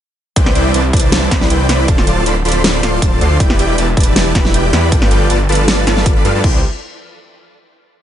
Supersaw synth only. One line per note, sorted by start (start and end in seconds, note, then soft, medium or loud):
0.36 0.53 E4 loud
0.36 0.53 B4 medium
0.36 0.53 C5 medium
0.36 0.53 D5 medium
0.36 0.53 G5 loud
0.55 0.72 E4 loud
0.55 0.72 B4 medium
0.55 0.72 C5 medium
0.55 0.72 D5 medium
0.55 0.72 G5 loud
0.74 0.83 E4 loud
0.74 0.83 B4 medium
0.74 0.83 C5 medium
0.74 0.83 D5 medium
0.74 0.83 A5 loud
0.93 1.10 E4 loud
0.93 1.10 B4 medium
0.93 1.10 C5 medium
0.93 1.10 D5 medium
0.93 1.10 A5 loud
1.12 1.29 E4 medium
1.12 1.29 B4 medium
1.12 1.29 C5 medium
1.12 1.29 D5 medium
1.12 1.29 A5 medium
1.31 1.48 E4 loud
1.31 1.48 B4 medium
1.31 1.48 C5 medium
1.31 1.48 D5 medium
1.31 1.48 B5 loud
1.50 1.67 E4 medium
1.50 1.67 B4 medium
1.50 1.67 C5 medium
1.50 1.67 D5 medium
1.50 1.67 G5 medium
1.69 1.86 E4 medium
1.69 1.86 B4 medium
1.69 1.86 C5 medium
1.69 1.86 D5 medium
1.69 1.86 B5 medium
1.88 2.05 F4 medium
1.88 2.05 A4 medium
1.88 2.05 C5 medium
1.88 2.05 D5 medium
1.88 2.05 A5 loud
2.07 2.24 F4 loud
2.07 2.24 A4 medium
2.07 2.24 C5 medium
2.07 2.24 D5 medium
2.07 2.24 A5 loud
2.26 2.35 F4 loud
2.26 2.35 A4 medium
2.26 2.35 C5 medium
2.26 2.35 D5 medium
2.26 2.35 B5 loud
2.45 2.62 F4 medium
2.45 2.62 A4 medium
2.45 2.62 C5 medium
2.45 2.62 D5 medium
2.45 2.62 B5 loud
2.64 2.81 F4 medium
2.64 2.81 A4 medium
2.64 2.81 C5 medium
2.64 2.81 D5 medium
2.64 2.81 B5 medium
2.83 3.00 F4 loud
2.83 3.00 A4 medium
2.83 3.00 C5 medium
2.83 3.00 D5 medium
2.83 3.00 C6 loud
3.02 3.19 F4 medium
3.02 3.19 A4 medium
3.02 3.19 C5 medium
3.02 3.19 D5 medium
3.02 3.19 A5 medium
3.21 3.38 F4 medium
3.21 3.38 A4 medium
3.21 3.38 C5 medium
3.21 3.38 D5 medium
3.21 3.38 C6 medium
3.40 3.57 E4 loud
3.40 3.57 G4 medium
3.40 3.57 B4 medium
3.40 3.57 D5 medium
3.40 3.57 G5 loud
3.59 3.76 E4 loud
3.59 3.76 G4 medium
3.59 3.76 B4 medium
3.59 3.76 D5 medium
3.59 3.76 G5 loud
3.78 3.86 E4 loud
3.78 3.86 G4 medium
3.78 3.86 B4 medium
3.78 3.86 D5 medium
3.78 3.86 A5 loud
3.97 4.14 E4 loud
3.97 4.14 G4 medium
3.97 4.14 B4 medium
3.97 4.14 D5 medium
3.97 4.14 A5 loud
4.16 4.33 E4 medium
4.16 4.33 G4 medium
4.16 4.33 B4 medium
4.16 4.33 D5 medium
4.16 4.33 A5 medium
4.35 4.52 E4 loud
4.35 4.52 G4 medium
4.35 4.52 B4 medium
4.35 4.52 D5 medium
4.35 4.52 B5 loud
4.54 4.71 E4 medium
4.54 4.71 G4 medium
4.54 4.71 B4 medium
4.54 4.71 D5 medium
4.54 4.71 G5 medium
4.73 4.90 E4 medium
4.73 4.90 G4 medium
4.73 4.90 B4 medium
4.73 4.90 D5 medium
4.73 4.90 B5 medium
4.92 5.09 F4 loud
4.92 5.09 A4 medium
4.92 5.09 B4 medium
4.92 5.09 D5 medium
4.92 5.09 G5 loud
5.11 5.28 F4 loud
5.11 5.28 A4 medium
5.11 5.28 B4 medium
5.11 5.28 D5 medium
5.11 5.28 G5 loud
5.30 5.38 F4 loud
5.30 5.38 A4 medium
5.30 5.38 B4 medium
5.30 5.38 D5 medium
5.30 5.38 A5 loud
5.49 5.66 F4 loud
5.49 5.66 A4 medium
5.49 5.66 B4 medium
5.49 5.66 D5 medium
5.49 5.66 A5 loud
5.68 5.85 F4 medium
5.68 5.85 A4 medium
5.68 5.85 B4 medium
5.68 5.85 D5 medium
5.68 5.85 A5 medium
5.87 6.14 F4 loud
5.87 6.14 A4 medium
5.87 6.14 B4 medium
5.87 6.14 D5 medium
5.87 6.14 A5 loud
6.16 6.23 F4 medium
6.16 6.23 A4 medium
6.16 6.23 B4 medium
6.16 6.23 D5 medium
6.16 6.23 B5 medium
6.25 6.33 F4 medium
6.25 6.33 A4 medium
6.25 6.33 B4 medium
6.25 6.33 D5 medium
6.25 6.33 F5 loud
6.35 6.42 F4 medium
6.35 6.42 A4 medium
6.35 6.42 B4 medium
6.35 6.42 D5 medium
6.35 6.42 A5 loud
6.44 6.58 E4 medium
6.44 6.58 B4 medium
6.44 6.58 C5 medium
6.44 6.58 D5 medium
6.44 6.58 G5 loud